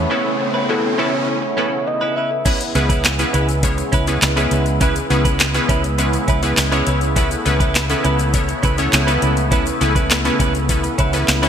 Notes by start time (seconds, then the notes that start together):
Already playing: C#3 A3 B3 E4 C#5, riser
0.10 B3 C#4 E4 A4 B4
0.25 muted clean electric guitar stroke
0.40 muted clean electric guitar stroke
0.54 C#4 E4 B4
0.69 B3 C#4 E4 F#4 A4
0.84 muted clean electric guitar stroke
0.98 B3 C#4 E4 A4 B4 C#5
1.13 muted clean electric guitar stroke
1.27 muted clean electric guitar stroke
1.42 muted clean electric guitar stroke
1.57 B3 C#4 E4 A4 B4
1.72 muted clean electric guitar stroke
1.87 D#5, muted clean electric guitar stroke
2.01 C#4 E4 B4
2.16 C#4 E4 B4 E5
2.31 muted clean electric guitar stroke
2.45 C#3 G#3 B3 C#4 E4 G#4 B4, kick, closed hi-hat, crash, shaker
2.60 muted clean electric guitar stroke, closed hi-hat, shaker
2.75 C#2 B3 C#4 E4 G#4 B4, muted clean electric guitar stroke, closed hi-hat, shaker
2.89 C#4 E4 B4, kick, closed hi-hat, shaker
3.05 snare, clap, closed hi-hat, shaker
3.19 B3 C#4 E4 G#4 B4, muted clean electric guitar stroke, closed hi-hat, shaker
3.33 C#2 C#4 E4 B4, closed hi-hat, shaker
3.48 muted clean electric guitar stroke, closed hi-hat, shaker
3.63 B3 C#4 E4 G#4 C#5, muted clean electric guitar stroke, kick, closed hi-hat, shaker
3.78 muted clean electric guitar stroke, closed hi-hat, shaker
3.92 C#2 C#4 E4 B4, kick, closed hi-hat, shaker
4.07 B3 C#4 E4 G#4 B4, muted clean electric guitar stroke, closed hi-hat, shaker
4.22 C#2, muted clean electric guitar stroke, snare, clap, closed hi-hat, shaker
4.37 B3 C#4 E4 G#4 B4, closed hi-hat, shaker
4.51 C#2 C#4 E4 B4, closed hi-hat, shaker
4.66 muted clean electric guitar stroke, closed hi-hat, shaker
4.81 B3 C#4 E4 G#4 B4, kick, closed hi-hat, shaker
4.95 muted clean electric guitar stroke, closed hi-hat, shaker
5.10 C#2 B3 C#4 E4 G#4 B4, muted clean electric guitar stroke, closed hi-hat, shaker
5.25 C#4 E4 B4, kick, closed hi-hat, shaker
5.40 snare, clap, closed hi-hat, shaker
5.54 B3 C#4 E4 G#4 B4, muted clean electric guitar stroke, closed hi-hat, shaker
5.69 C#2 C#4 E4 B4, kick, closed hi-hat, shaker
5.84 muted clean electric guitar stroke, closed hi-hat, shaker
5.98 B3 C#4 E4 G#4 B4, muted clean electric guitar stroke, closed hi-hat, shaker
6.13 muted clean electric guitar stroke, closed hi-hat, shaker
6.28 C#2 C#4 E4 B4, kick, closed hi-hat, shaker
6.42 B3 C#4 E4 G#4 B4, muted clean electric guitar stroke, closed hi-hat, shaker
6.57 C#2, muted clean electric guitar stroke, snare, clap, closed hi-hat, shaker
6.72 B3 C#4 E4 G#4 B4 C#5, closed hi-hat, shaker
6.86 C#2 C#4 E4 B4, closed hi-hat, shaker
7.01 muted clean electric guitar stroke, closed hi-hat, shaker
7.16 A3 B3 C#4 E4 A4 B4, kick, closed hi-hat, shaker
7.31 muted clean electric guitar stroke, closed hi-hat, shaker
7.45 C#2 B3 C#4 E4 A4 B4, muted clean electric guitar stroke, closed hi-hat, shaker
7.60 C#4 E4 B4, kick, closed hi-hat, shaker
7.75 snare, clap, closed hi-hat, shaker
7.90 B3 C#4 E4 A4 B4, muted clean electric guitar stroke, closed hi-hat, shaker
8.04 C#2 C#4 E4 B4, closed hi-hat, shaker
8.19 muted clean electric guitar stroke, closed hi-hat, shaker
8.34 B3 C#4 E4 A4 C#5, muted clean electric guitar stroke, kick, closed hi-hat, shaker
8.48 muted clean electric guitar stroke, closed hi-hat, shaker
8.63 C#2 C#4 E4 B4, kick, closed hi-hat, shaker
8.78 B3 C#4 E4 A4 C#5, muted clean electric guitar stroke, closed hi-hat, shaker
8.92 C#2, muted clean electric guitar stroke, snare, clap, closed hi-hat, shaker
9.07 B3 C#4 E4 A4 B4, closed hi-hat, shaker
9.22 C#2 C#4 E4 B4, closed hi-hat, shaker
9.37 muted clean electric guitar stroke, closed hi-hat, shaker
9.51 B3 C#4 E4 A4 B4, kick, closed hi-hat, shaker
9.66 muted clean electric guitar stroke, closed hi-hat, shaker
9.81 C#2 B3 C#4 E4 A4 B4, muted clean electric guitar stroke, closed hi-hat, shaker
9.95 C#4 E4 B4, kick, closed hi-hat, shaker
10.11 snare, clap, closed hi-hat, shaker
10.25 B3 C#4 E4 A4 B4, muted clean electric guitar stroke, closed hi-hat, shaker
10.39 C#2 C#4 E4 B4, kick, closed hi-hat, shaker
10.54 muted clean electric guitar stroke, closed hi-hat, shaker
10.69 B3 C#4 E4 A4 B4, muted clean electric guitar stroke, kick, closed hi-hat, shaker
10.84 muted clean electric guitar stroke, closed hi-hat, shaker
10.98 C#2 C#4 E4 B4, kick, closed hi-hat, shaker
11.13 B3 C#4 E4 A4 B4, muted clean electric guitar stroke, closed hi-hat, shaker
11.28 C#2, muted clean electric guitar stroke, snare, clap, closed hi-hat, shaker
11.42 B3 C#4 E4 A4 B4 C#5, closed hi-hat, shaker